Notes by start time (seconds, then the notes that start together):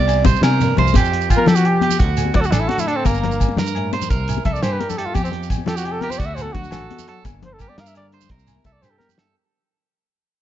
Already playing: C2 C3 D5
0.08 ride, low agogo, shekere
0.17 low conga
0.25 G3 C5, kick, ride, high conga, low conga, shekere
0.34 low conga, shekere
0.41 C3 A#4, muted nylon-string guitar stroke, snare, ride, high conga, low agogo
0.60 G2 A#3, ride, low conga, shekere
0.77 C2 E4 C5, ride, low conga
0.87 shekere
0.94 F2 C4 G4, kick, closed hi-hat, high conga, low agogo, shekere
1.05 shekere
1.12 F4, closed hi-hat
1.21 shekere
1.29 F3 F4, kick, closed hi-hat, low conga, low agogo, shekere
1.37 A#4, high conga
1.46 F3 G4 A4, snare, closed hi-hat, low conga, shekere
1.55 F#4, shekere
1.64 C3 G4, closed hi-hat, low conga, low agogo
1.81 F4 G4, closed hi-hat, high conga
1.90 low conga, shekere
1.99 D2 D3 D4 F#4, kick, closed hi-hat
2.17 A4, closed hi-hat, low agogo, shekere
2.25 high conga
2.34 D2 F#3 F#4 D5, kick, closed hi-hat, low conga
2.41 A4, shekere
2.46 F#4
2.51 A1 D4 A4, snare, closed hi-hat, low agogo, shekere
2.60 E4
2.68 A2 F#4, closed hi-hat, high conga
2.78 E4, low conga, shekere
2.87 D4 A4, closed hi-hat, low conga
2.96 C4, low conga
3.05 G1 G2 A#3 A#4, kick, closed hi-hat, high conga, low agogo, shekere
3.14 shekere
3.23 snare, closed hi-hat, low conga
3.32 shekere
3.40 G3, kick, closed hi-hat, low conga, low agogo, shekere
3.48 high conga
3.56 G2 A#4, snare, closed hi-hat, low conga, shekere
3.66 shekere
3.75 A2, closed hi-hat, low conga, low agogo
3.93 A#2 C5, closed hi-hat, high conga
4.02 low conga, shekere
4.10 C2 C3 A#3 A#4, kick, closed hi-hat, shekere
4.28 E4, closed hi-hat, low agogo, shekere
4.37 high conga
4.45 C2 G3 A4 E5, kick, closed hi-hat, low conga
4.53 D5, shekere
4.62 G2 G4 A#4 C5, snare, closed hi-hat, low agogo, shekere
4.72 B4
4.80 G2 A#4, closed hi-hat, high conga
4.89 A4, low conga, shekere
4.97 E4 G4 A4, closed hi-hat
5.05 F4, low conga
5.14 F2 C4 G4, kick, closed hi-hat, high conga, low agogo, shekere
5.24 C4, shekere
5.32 closed hi-hat, low conga
5.43 shekere
5.50 F3, kick, closed hi-hat, low conga, low agogo, shekere
5.58 high conga
5.66 F3 G4 A4, snare, closed hi-hat, low conga, shekere
5.76 F#4, shekere
5.84 C3 G4, closed hi-hat, low conga, low agogo
5.92 A4
6.01 F4 G4 A#4, closed hi-hat, high conga
6.10 C5, low conga, shekere
6.18 D2 D3 D4 F#4 D5, kick, closed hi-hat, shekere
6.26 E5
6.35 A4 C5, closed hi-hat, low agogo, shekere
6.42 A4, high conga
6.53 D2 F#3 F#4, kick, closed hi-hat, low conga
6.64 shekere
6.71 A1 D3 A4, snare, closed hi-hat, low agogo, shekere
6.90 E3, closed hi-hat, high conga
6.99 low conga, shekere
7.08 F#3 A4, closed hi-hat, low conga
7.16 low conga
7.24 G1 G2 A#3, muted clean electric guitar stroke, kick, closed hi-hat, high conga, low agogo, shekere
7.42 D4 C5, closed hi-hat, low conga
7.53 A4, low conga
7.59 G3 G4 A#4, kick, closed hi-hat, low agogo, shekere
7.69 D5, high conga
7.78 G2 A#4 F5, snare, closed hi-hat, low conga
7.86 E5, shekere
7.95 D3 D5, closed hi-hat, low conga, low agogo, shekere
8.12 D4 C5, closed hi-hat, low conga
8.21 low conga, shekere
8.29 C2 C3 A#3 A#4, kick, closed hi-hat
8.39 shekere
8.47 E4, closed hi-hat, low agogo, shekere
8.57 high conga
8.64 C2 G3 A4 E5, kick, closed hi-hat, low conga, shekere
8.72 D5
8.82 G2 G4 A#4 C5, snare, low conga, low agogo, shekere
8.90 A4
8.98 G2 A#4, snare, high conga, low conga
9.09 low conga, shekere
9.17 E4 A4, snare, low conga
9.25 low conga